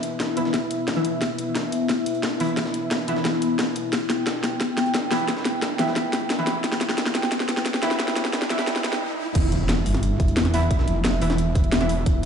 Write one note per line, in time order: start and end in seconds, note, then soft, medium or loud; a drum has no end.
0.00 8.97 B3 medium
0.00 8.97 E4 medium
0.00 3.91 E5 medium
0.00 closed hi-hat medium
0.20 kick loud
0.20 snare medium
0.20 snare loud
0.20 closed hi-hat medium
0.37 0.94 E3 medium
0.37 0.94 B3 medium
0.37 0.94 E4 loud
0.37 closed hi-hat medium
0.45 snare soft
0.54 kick loud
0.54 snare medium
0.54 closed hi-hat medium
0.71 closed hi-hat loud
0.71 closed hi-hat medium
0.88 kick loud
0.88 snare medium
0.88 snare loud
0.88 closed hi-hat medium
0.96 2.38 E3 medium
0.96 2.38 B3 medium
0.96 2.38 E4 medium
0.96 closed hi-hat soft
1.05 closed hi-hat medium
1.22 kick loud
1.22 snare medium
1.22 closed hi-hat medium
1.39 closed hi-hat medium
1.55 kick loud
1.55 snare medium
1.55 snare loud
1.55 closed hi-hat medium
1.72 closed hi-hat medium
1.89 kick loud
1.89 snare medium
1.89 closed hi-hat medium
2.06 closed hi-hat medium
2.15 closed hi-hat soft
2.23 kick loud
2.23 snare loud
2.23 snare medium
2.23 closed hi-hat medium
2.40 2.47 E3 loud
2.40 2.47 B3 medium
2.40 2.47 E4 loud
2.40 closed hi-hat medium
2.40 open hi-hat medium
2.49 closed hi-hat soft
2.57 kick loud
2.57 snare medium
2.57 closed hi-hat medium
2.66 snare soft
2.74 closed hi-hat medium
2.91 kick loud
2.91 snare loud
2.91 snare medium
2.91 closed hi-hat medium
3.08 3.65 E3 medium
3.08 3.65 B3 medium
3.08 3.65 E4 loud
3.08 closed hi-hat medium
3.16 snare soft
3.25 kick loud
3.25 snare loud
3.25 snare medium
3.25 closed hi-hat medium
3.42 closed hi-hat medium
3.59 kick loud
3.59 snare loud
3.59 snare medium
3.59 closed hi-hat medium
3.76 closed hi-hat medium
3.93 8.99 G5 medium
3.93 kick loud
3.93 snare medium
3.93 closed hi-hat medium
3.93 riser medium
4.10 snare medium
4.10 closed hi-hat medium
4.27 kick loud
4.27 snare loud
4.27 snare medium
4.27 closed hi-hat medium
4.44 snare medium
4.44 closed hi-hat medium
4.61 kick loud
4.61 snare medium
4.61 closed hi-hat medium
4.77 snare medium
4.77 closed hi-hat medium
4.86 closed hi-hat soft
4.94 kick loud
4.94 snare loud
4.94 snare medium
4.94 closed hi-hat medium
5.11 5.18 E3 loud
5.11 5.18 B3 medium
5.11 5.18 E4 loud
5.11 snare medium
5.11 closed hi-hat medium
5.11 open hi-hat medium
5.20 closed hi-hat soft
5.28 kick loud
5.28 snare medium
5.28 closed hi-hat medium
5.37 snare medium
5.45 snare medium
5.45 closed hi-hat medium
5.62 kick loud
5.62 snare loud
5.62 snare medium
5.62 closed hi-hat medium
5.79 6.37 E3 medium
5.79 6.37 B3 medium
5.79 6.37 E4 medium
5.79 snare medium
5.79 closed hi-hat medium
5.88 snare soft
5.96 kick loud
5.96 snare medium
5.96 closed hi-hat medium
6.13 snare medium
6.13 closed hi-hat loud
6.13 closed hi-hat medium
6.30 kick loud
6.30 snare loud
6.30 snare medium
6.30 closed hi-hat medium
6.39 7.81 E3 medium
6.39 7.81 B3 medium
6.39 7.81 E4 medium
6.39 closed hi-hat soft
6.47 snare medium
6.47 closed hi-hat medium
6.64 kick loud
6.64 snare medium
6.64 closed hi-hat medium
6.72 snare medium
6.81 snare loud
6.81 closed hi-hat medium
6.81 closed hi-hat loud
6.89 snare medium
6.98 kick loud
6.98 snare loud
6.98 snare medium
6.98 closed hi-hat medium
7.06 snare medium
7.15 snare loud
7.15 closed hi-hat loud
7.15 closed hi-hat medium
7.23 snare medium
7.32 kick loud
7.32 snare loud
7.32 closed hi-hat medium
7.40 snare medium
7.49 snare loud
7.49 closed hi-hat medium
7.57 snare medium
7.66 kick loud
7.66 snare loud
7.66 closed hi-hat medium
7.74 snare medium
7.83 7.90 E3 loud
7.83 7.90 B3 medium
7.83 7.90 E4 loud
7.83 snare loud
7.83 closed hi-hat medium
7.83 closed hi-hat loud
7.91 snare medium
7.99 kick loud
7.99 snare loud
7.99 closed hi-hat medium
8.08 snare medium
8.08 snare soft
8.16 snare loud
8.16 closed hi-hat loud
8.16 closed hi-hat medium
8.25 snare medium
8.33 kick loud
8.33 snare loud
8.33 closed hi-hat medium
8.42 snare medium
8.50 9.08 E3 medium
8.50 9.08 B3 medium
8.50 9.08 E4 loud
8.50 snare loud
8.50 closed hi-hat loud
8.50 closed hi-hat medium
8.59 snare medium
8.59 snare soft
8.67 kick loud
8.67 snare loud
8.67 closed hi-hat medium
8.76 snare loud
8.84 snare loud
8.84 closed hi-hat loud
8.84 closed hi-hat medium
8.93 snare medium
9.35 9.85 E1 loud
9.35 12.26 B3 medium
9.35 12.26 E4 medium
9.35 12.26 E5 medium
9.35 kick loud
9.35 closed hi-hat loud
9.35 closed hi-hat medium
9.35 crash loud
9.35 impact medium
9.52 closed hi-hat medium
9.69 snare loud
9.69 closed hi-hat medium
9.86 10.35 G1 loud
9.86 closed hi-hat medium
9.86 open hi-hat medium
9.94 snare soft
10.03 closed hi-hat medium
10.20 kick loud
10.20 closed hi-hat medium
10.28 closed hi-hat soft
10.37 10.86 E2 loud
10.37 snare loud
10.37 closed hi-hat medium
10.37 closed hi-hat loud
10.45 snare soft
10.54 10.61 E3 medium
10.54 10.61 B3 medium
10.54 10.61 E4 loud
10.54 open hi-hat medium
10.62 closed hi-hat soft
10.71 kick loud
10.71 closed hi-hat loud
10.71 closed hi-hat medium
10.79 snare soft
10.88 11.20 F1 loud
10.88 closed hi-hat medium
11.05 snare loud
11.05 closed hi-hat medium
11.21 12.05 E1 loud
11.21 11.79 E3 medium
11.21 11.79 B3 medium
11.21 11.79 E4 loud
11.21 closed hi-hat medium
11.21 open hi-hat medium
11.30 snare soft
11.38 closed hi-hat medium
11.55 kick loud
11.55 closed hi-hat medium
11.64 closed hi-hat soft
11.72 snare loud
11.72 closed hi-hat medium
11.81 12.26 E3 medium
11.81 12.26 B3 medium
11.81 12.26 E4 medium
11.81 snare soft
11.81 closed hi-hat soft
11.89 closed hi-hat medium
11.89 open hi-hat medium
12.06 12.26 E1 loud
12.06 kick loud
12.06 closed hi-hat medium